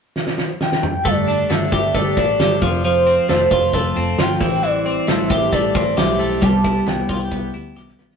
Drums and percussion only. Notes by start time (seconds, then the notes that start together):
0.16 snare
0.27 snare
0.38 snare
0.61 snare
0.72 snare
0.83 mid tom
1.05 kick, closed hi-hat
1.28 closed hi-hat
1.49 snare, closed hi-hat
1.72 kick, snare, closed hi-hat
1.95 kick, closed hi-hat
2.17 kick, closed hi-hat
2.40 snare, closed hi-hat
2.62 kick, open hi-hat
2.84 closed hi-hat
3.07 closed hi-hat
3.28 snare, closed hi-hat
3.51 kick, closed hi-hat
3.73 kick, closed hi-hat
3.96 closed hi-hat
4.18 snare, closed hi-hat
4.41 kick, open hi-hat
4.63 closed hi-hat
4.86 closed hi-hat
5.07 snare, closed hi-hat
5.30 kick, closed hi-hat
5.53 kick, closed hi-hat
5.75 kick, closed hi-hat
5.98 snare, closed hi-hat
6.20 open hi-hat
6.42 kick, closed hi-hat
6.64 kick, closed hi-hat
6.86 snare, closed hi-hat
7.09 kick, snare, closed hi-hat
7.32 kick, closed hi-hat
7.54 closed hi-hat
7.77 snare
7.88 snare
7.99 snare
8.10 snare